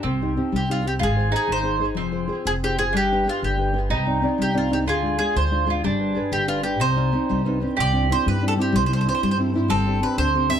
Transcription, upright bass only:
X:1
M:6/8
L:1/8
Q:3/8=125
K:Cm
V:1 name="Upright bass" clef=bass
C,,3 C,,3 | A,,,3 A,,,3 | F,,,3 F,,,3 | G,,,3 G,,,3 |
C,,3 C,,3 | D,,3 D,,3 | G,,,3 G,,,3 | C,,3 C,,3 |
[K:C] C,,3 G,,3 | C,,3 G,,3 | G,,,3 D,,3 |]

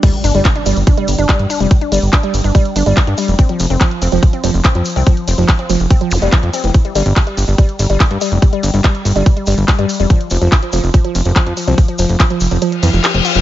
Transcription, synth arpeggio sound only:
X:1
M:4/4
L:1/16
Q:1/4=143
K:Fmix
V:1 name="Synth arpeggio sound" clef=bass
G, z D G, z D G, z D G, z D G, z D G, | z D G, z D G, z D G, z D G, z D G, z | C F, z C F, z C F, z C F, z C F, z C | F, z C F, z C F, z C F, z G, F, z C =E, |
z G, G, z G, G, z G, G, z G, G, z G, G, z | G, G, z G, G, z G, G, z G, G, z G, G, z G, | F, z F, F, z F, F, z F, F, z F, F, z F, F, | z F, F, z F, F, z F, F, z =E, F, G F, F F, |]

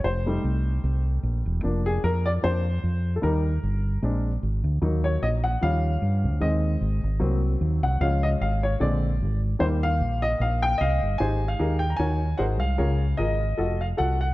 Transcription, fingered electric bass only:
X:1
M:4/4
L:1/8
Q:"Swing" 1/4=150
K:Ab
V:1 name="Fingered electric bass" clef=bass
F,,,2 C,,2 C,,2 B,,, _F,,, | F,,,2 F,,2 F,,2 F,,2 | E,,2 G,,,2 B,,,2 A,,, =D,, | E,,2 B,,,2 E,,2 G,, =D,, |
E,,2 A,,, A,,, C,,2 E,, C,, | D,,2 A,,,2 B,,,2 A,,,2 | E,,2 B,,,2 B,,,2 C,, G,,, | A,,,2 E,,2 E,,2 A,,, C,, |
D,,2 A,,,2 F,,,2 C,,2 |]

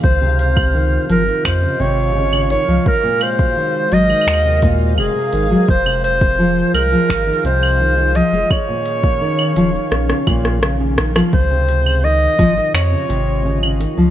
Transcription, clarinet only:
X:1
M:4/4
L:1/8
Q:1/4=85
K:Db
V:1 name="Clarinet"
c c2 B c d2 d | B c2 e2 z A2 | c c2 B2 c2 e | d6 z2 |
c2 e2 d3 z |]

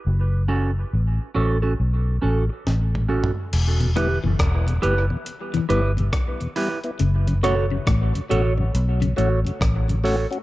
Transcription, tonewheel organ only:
X:1
M:4/4
L:1/16
Q:"Swing 16ths" 1/4=69
K:Edor
V:1 name="Tonewheel organ" clef=bass
z16 | z [E,,B,,] [G,B,E] [E,,B,,] z [E,,B,,] [G,B,E] [E,,B,,] z [E,,B,,] [G,B,E] [E,,B,,] z [E,,B,,] [G,B,E] [B,E] | z [F,,C,] [A,CF] [F,,C,] z [F,,C,] [A,CF] [F,,C,] z [F,,C,] [A,CF] [F,,C,] z [F,,C,] [A,CF] [CF] |]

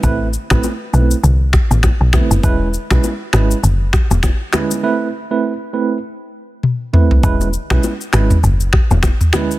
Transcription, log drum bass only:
X:1
M:4/4
L:1/16
Q:"Swing 16ths" 1/4=100
K:E
V:1 name="Log drum bass" clef=bass
A,,,3 A,,, z2 B,,,2 =C,,3 A,,,2 B,,,2 F,,, | E,,,3 B,,, z2 G,,,2 F,,,3 E,,,2 z3 | z16 | E,,,3 B,,, z2 G,,,2 F,,,3 E,,,2 z3 |]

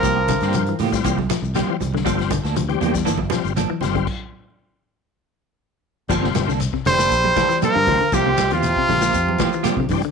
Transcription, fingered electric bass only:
X:1
M:4/4
L:1/16
Q:1/4=119
K:Gdor
V:1 name="Fingered electric bass" clef=bass
C,,3 G,,3 A,,2 C,,2 z C,,2 z C,,2 | G,,,3 D,,3 E,,2 G,,,2 z G,,,2 z G,,,2 | z16 | G,,,2 G,,, C,,2 z F,,,2 B,,,2 z3 G,, D,, z |
C,,2 C,, E,,2 z B,,,2 F,,2 z3 C, G,, z |]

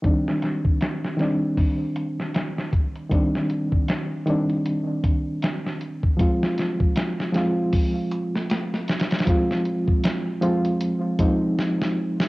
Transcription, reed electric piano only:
X:1
M:4/4
L:1/8
Q:"Swing 16ths" 1/4=78
K:Cm
V:1 name="Reed electric piano"
[E,G,CD]3 [E,G,CD]4- [E,G,CD] | [E,G,CD]3 [E,G,CD]4- [E,G,CD] | [F,A,CF]3 [F,A,CF]4- [F,A,CF] | [F,A,CF]3 [F,A,CF]2 [F,A,CE] z2 |]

